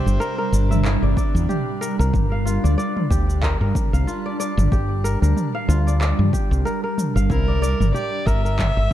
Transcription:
0.00 2.10 C3 medium
0.00 7.26 G3 medium
0.00 7.26 D4 medium
0.00 0.80 E4 medium
0.00 1.29 G4 medium
0.00 0.81 C5 medium
0.00 0.66 D5 medium
0.00 0.12 E5 medium
0.06 0.17 G1 medium
0.06 cabasa soft
0.20 0.38 A#4 loud
0.20 cabasa soft
0.38 1.66 A#4 medium
0.52 0.96 G1 medium
0.52 cabasa medium
0.71 1.74 E5 medium
0.71 mid tom medium
0.71 cabasa soft
0.84 2.38 E4 medium
0.84 clap medium
0.84 cabasa soft
1.02 1.13 G1 medium
1.02 1.16 D5 medium
1.17 2.28 D5 loud
1.17 kick loud
1.17 cabasa medium
1.35 1.45 E2 loud
1.35 cabasa soft
1.49 2.90 G4 medium
1.49 mid tom medium
1.49 cabasa soft
1.81 1.99 A#4 loud
1.81 cabasa medium
1.99 2.10 C2 loud
1.99 3.27 A#4 medium
1.99 cabasa soft
2.13 2.57 G1 loud
2.13 7.26 A5 medium
2.13 kick loud
2.13 mid tom medium
2.13 cabasa soft
2.32 3.32 F5 medium
2.45 3.97 F4 medium
2.45 cabasa medium
2.64 2.75 D2 medium
2.64 2.77 D5 medium
2.64 cabasa soft
2.78 3.88 D5 loud
2.78 cabasa soft
2.97 mid tom medium
3.10 3.54 D2 medium
3.10 4.51 G4 medium
3.10 kick loud
3.10 cabasa medium
3.30 cabasa soft
3.43 3.60 A#4 medium
3.43 kick medium
3.43 clap medium
3.43 cabasa soft
3.61 3.71 G2 medium
3.61 4.88 A#4 medium
3.75 kick loud
3.75 mid tom medium
3.75 cabasa medium
3.93 4.04 C2 medium
3.93 4.93 F5 medium
3.93 cabasa soft
4.07 5.59 F4 medium
4.07 cabasa soft
4.26 4.39 D5 medium
4.40 5.50 D5 loud
4.40 cabasa medium
4.57 4.68 G1 loud
4.57 mid tom medium
4.57 cabasa soft
4.72 5.15 G1 loud
4.72 6.13 G4 medium
4.72 kick loud
4.72 cabasa soft
5.04 5.22 A#4 loud
5.04 cabasa medium
5.22 5.33 D2 medium
5.22 6.50 A#4 medium
5.22 cabasa soft
5.37 mid tom medium
5.37 cabasa soft
5.55 6.54 F5 medium
5.68 6.12 D2 loud
5.68 7.20 F4 medium
5.68 cabasa medium
5.87 6.00 D5 medium
5.87 cabasa soft
6.01 7.12 D5 medium
6.01 clap medium
6.01 cabasa soft
6.19 6.30 G2 medium
6.19 mid tom medium
6.33 7.74 G4 medium
6.33 kick loud
6.33 cabasa medium
6.51 6.62 C2 loud
6.51 cabasa soft
6.65 6.83 A#4 loud
6.65 cabasa soft
6.84 8.11 A#4 medium
6.98 mid tom medium
6.98 cabasa medium
7.16 7.26 G1 medium
7.16 7.36 F5 medium
7.16 cabasa soft
7.29 7.73 C2 loud
7.29 8.93 C3 medium
7.29 8.93 G3 medium
7.29 8.93 D4 medium
7.29 8.86 E4 medium
7.29 7.90 A#4 loud
7.29 kick loud
7.29 cabasa soft
7.48 7.62 D5 medium
7.62 8.73 D5 loud
7.62 cabasa medium
7.80 7.91 G1 medium
7.80 mid tom medium
7.80 cabasa soft
7.94 8.93 G4 medium
7.94 8.28 D5 loud
7.94 cabasa soft
8.26 8.70 G1 loud
8.26 8.44 A#4 loud
8.26 8.93 E5 loud
8.26 kick loud
8.26 cabasa medium
8.45 8.93 A#4 medium
8.45 cabasa soft
8.59 kick medium
8.59 clap medium
8.59 mid tom medium
8.59 cabasa soft
8.77 8.88 G1 medium
8.77 8.93 E5 medium

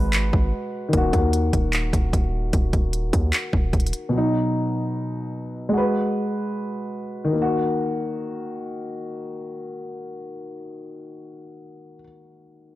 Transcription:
0.00 0.32 G#1 loud
0.00 0.88 G#3 medium
0.00 0.90 F#4 medium
0.00 0.92 B4 medium
0.13 clap loud
0.13 closed hi-hat medium
0.33 0.52 G#1 loud
0.33 kick loud
0.89 4.07 D#3 medium
0.93 1.12 D#1 loud
0.93 4.09 A#3 medium
0.93 kick loud
0.93 closed hi-hat medium
0.97 4.11 F#4 medium
1.13 1.52 D#2 loud
1.13 kick medium
1.13 closed hi-hat medium
1.33 closed hi-hat medium
1.53 1.92 D#1 loud
1.53 kick medium
1.53 closed hi-hat medium
1.73 clap loud
1.73 closed hi-hat medium
1.93 2.12 D#1 loud
1.93 kick loud
1.93 closed hi-hat medium
2.13 2.52 D#1 loud
2.13 kick medium
2.13 closed hi-hat medium
2.53 2.73 D#1 loud
2.53 kick loud
2.53 closed hi-hat medium
2.73 3.12 D#1 loud
2.73 kick medium
2.73 closed hi-hat medium
2.93 closed hi-hat medium
3.13 3.32 D#2 loud
3.13 kick medium
3.13 closed hi-hat medium
3.33 clap loud
3.33 closed hi-hat medium
3.53 3.72 D#1 loud
3.53 kick loud
3.73 3.92 D#1 loud
3.73 kick medium
3.73 closed hi-hat soft
3.80 closed hi-hat medium
3.87 closed hi-hat medium
3.93 closed hi-hat medium
4.09 5.68 B2 medium
4.13 5.70 F#3 medium
4.18 5.72 D#4 medium
5.69 7.28 G#3 medium
5.73 7.30 F#4 medium
5.78 7.32 B4 medium
7.24 11.95 D#3 medium
7.33 11.99 A#3 medium
7.42 12.04 F#4 medium

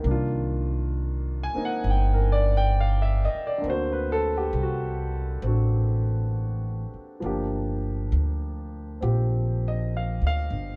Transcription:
0.00 3.61 D#3 medium
0.00 1.53 A#3 soft
0.04 1.50 C2 medium
0.04 3.65 D4 medium
0.11 3.67 F4 medium
1.43 1.63 G#5 medium
1.54 3.60 A#3 soft
1.54 3.64 C4 soft
1.54 3.65 D#4 medium
1.54 muted upright bass stroke soft
1.65 1.82 F#5 medium
1.84 3.30 G1 medium
1.90 2.16 G5 medium
2.13 2.43 A#4 medium
2.32 2.53 D5 medium
2.57 2.73 G5 medium
2.80 3.06 F5 medium
3.02 3.32 E5 medium
3.25 3.44 D#5 medium
3.35 muted upright bass stroke soft
3.47 3.62 D5 medium
3.58 7.20 D3 soft
3.58 7.21 A#3 soft
3.64 4.50 D2 medium
3.64 5.41 C4 soft
3.68 4.61 F#4 medium
3.68 3.96 C5 medium
3.92 4.22 B4 medium
4.12 4.32 A4 medium
4.37 4.53 G4 medium
4.53 5.39 C2 medium
4.63 5.45 F#4 medium
5.42 6.89 A1 medium
5.42 7.23 C4 soft
5.42 7.22 D4 soft
5.47 7.25 F#4 soft
6.94 muted upright bass stroke soft
7.20 8.09 G1 medium
7.20 10.76 F3 medium
7.20 10.76 A#3 soft
7.20 10.76 D4 soft
7.26 9.01 G4 medium
8.12 8.98 D2 medium
9.01 10.18 A#1 medium
9.01 10.76 C4 soft
9.01 10.76 F4 soft
9.01 10.76 G4 medium
9.68 9.94 D#5 medium
9.97 10.23 F5 medium
10.22 10.49 D2 medium
10.27 10.76 F5 medium
10.50 10.76 G1 medium

